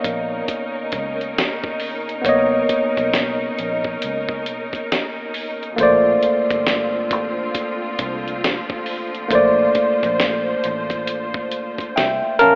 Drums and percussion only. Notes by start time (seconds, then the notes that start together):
0.04 kick, closed hi-hat
0.48 kick, closed hi-hat
0.92 kick, closed hi-hat
1.21 closed hi-hat
1.38 snare, closed hi-hat
1.64 kick
1.80 open hi-hat
2.09 closed hi-hat
2.25 kick, closed hi-hat
2.69 kick, closed hi-hat
2.97 kick, closed hi-hat
3.14 snare, closed hi-hat
3.59 closed hi-hat
3.84 kick
4.02 closed hi-hat
4.29 kick
4.46 closed hi-hat
4.73 kick, closed hi-hat
4.92 snare, closed hi-hat
5.34 open hi-hat
5.63 closed hi-hat
5.78 kick, closed hi-hat
6.23 closed hi-hat
6.50 kick, closed hi-hat
6.67 snare, closed hi-hat
7.11 kick, closed hi-hat
7.55 kick, closed hi-hat
7.99 kick, closed hi-hat
8.28 closed hi-hat
8.44 snare, closed hi-hat
8.70 kick
8.86 open hi-hat
9.15 closed hi-hat
9.31 kick, closed hi-hat
9.75 kick, closed hi-hat
10.03 kick, closed hi-hat
10.20 snare, closed hi-hat
10.64 closed hi-hat
10.90 kick, closed hi-hat
11.07 closed hi-hat
11.34 kick
11.51 closed hi-hat
11.78 kick, closed hi-hat
11.97 snare, closed hi-hat
12.39 closed hi-hat